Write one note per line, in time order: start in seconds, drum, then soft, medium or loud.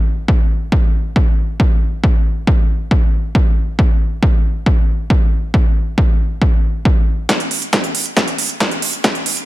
0.28 kick loud
0.72 kick loud
1.16 kick loud
1.60 kick loud
2.04 kick loud
2.47 kick loud
2.91 kick loud
3.35 kick loud
3.79 kick loud
4.23 kick loud
4.66 kick loud
5.10 kick loud
5.54 kick loud
5.98 kick loud
6.42 kick loud
6.85 kick loud
7.29 kick loud
7.29 snare soft
7.29 closed hi-hat loud
7.40 closed hi-hat medium
7.51 open hi-hat loud
7.62 closed hi-hat medium
7.73 kick loud
7.73 snare soft
7.73 closed hi-hat medium
7.84 closed hi-hat medium
7.95 open hi-hat loud
8.06 closed hi-hat soft
8.17 kick loud
8.17 snare soft
8.17 closed hi-hat medium
8.28 closed hi-hat medium
8.38 open hi-hat loud
8.49 closed hi-hat medium
8.60 kick loud
8.60 snare medium
8.60 closed hi-hat loud
8.71 closed hi-hat medium
8.82 open hi-hat loud
8.93 closed hi-hat medium
9.04 kick loud
9.04 snare medium
9.04 closed hi-hat medium
9.15 closed hi-hat soft
9.26 open hi-hat loud
9.37 closed hi-hat medium